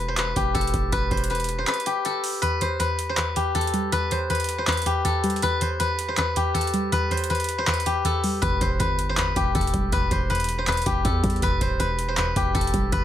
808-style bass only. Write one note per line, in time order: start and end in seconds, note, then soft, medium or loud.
0.00 0.34 E1 loud
0.36 0.54 E1 loud
0.55 0.73 E1 loud
0.74 0.92 E1 loud
0.92 1.10 E1 loud
1.11 1.65 E1 loud
8.42 8.60 E1 loud
8.61 8.79 E1 loud
8.80 9.34 G1 loud
9.36 9.54 E1 loud
9.55 9.73 E1 loud
9.74 9.92 E1 loud
9.92 10.10 E1 loud
10.11 10.83 E1 loud
10.86 11.04 E1 loud
11.05 11.23 E2 loud
11.24 11.42 E2 loud
11.42 11.60 E1 loud
11.61 11.79 D1 loud
11.80 12.34 E1 loud
12.36 12.54 E1 loud
12.55 12.73 E1 loud
12.74 12.92 E1 loud
12.92 13.04 E1 loud